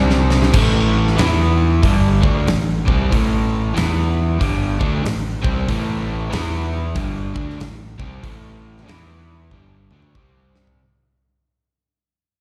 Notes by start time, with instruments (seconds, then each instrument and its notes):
Already playing: fingered electric bass C2, overdriven electric guitar C3 G3 C4
0.10 snare
0.30 snare
0.42 snare
0.53 fingered electric bass A1, overdriven electric guitar A2 E3 A3, kick, crash
1.07 snare
1.16 fingered electric bass E2, overdriven electric guitar E3 B3 E4, snare, open hi-hat
1.82 fingered electric bass G1, overdriven electric guitar G2 D3 G3, kick, open hi-hat
2.22 fingered electric bass D2, overdriven electric guitar D3 A3 D4, kick
2.47 fingered electric bass A1, overdriven electric guitar A2 E3, snare, open hi-hat
2.87 fingered electric bass C2, overdriven electric guitar C3 G3 C4, kick
3.11 fingered electric bass A1, overdriven electric guitar A2 E3 A3, kick, open hi-hat
3.74 fingered electric bass E2, overdriven electric guitar E3 B3 E4, snare, open hi-hat
4.39 fingered electric bass G1, overdriven electric guitar G2 D3 G3, kick, open hi-hat
4.79 fingered electric bass D2, overdriven electric guitar D3 A3 D4, kick
5.03 fingered electric bass A1, overdriven electric guitar A2 E3, snare, open hi-hat
5.42 fingered electric bass C2, overdriven electric guitar C3 G3 C4, kick
5.68 fingered electric bass A1, overdriven electric guitar A2 E3 A3, kick, open hi-hat
6.30 fingered electric bass E2, overdriven electric guitar E3 B3 E4, snare, open hi-hat
6.95 fingered electric bass G1, overdriven electric guitar G2 D3 G3, kick, open hi-hat
7.34 fingered electric bass D2, overdriven electric guitar D3 A3 D4, kick
7.50 snare
7.58 fingered electric bass A1, overdriven electric guitar A2 E3, snare, open hi-hat
7.98 fingered electric bass C2, overdriven electric guitar C3 G3 C4, kick
8.22 fingered electric bass A1, overdriven electric guitar A2 E3 A3, kick, open hi-hat
8.77 snare
8.87 fingered electric bass E2, overdriven electric guitar E3 B3 E4, snare, open hi-hat
9.51 fingered electric bass G1, overdriven electric guitar G2 D3 G3, kick
9.91 fingered electric bass D2, overdriven electric guitar D3 A3 D4, mid tom
10.02 mid tom
10.15 fingered electric bass C2, overdriven electric guitar C3 G3 C4, kick
10.56 snare
10.67 floor tom